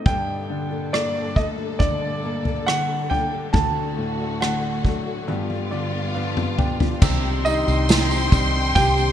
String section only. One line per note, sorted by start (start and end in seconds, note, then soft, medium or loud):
0.06 3.50 G2 medium
0.06 3.51 A#2 medium
0.06 6.98 D3 medium
0.06 3.51 A4 medium
3.54 5.26 D2 medium
3.54 5.26 A3 medium
3.54 5.27 F#4 medium
5.28 7.00 G2 medium
5.28 7.00 B3 medium
5.28 7.01 F4 medium
7.02 9.12 D#3 medium
7.02 9.12 C5 medium
7.02 9.12 G5 medium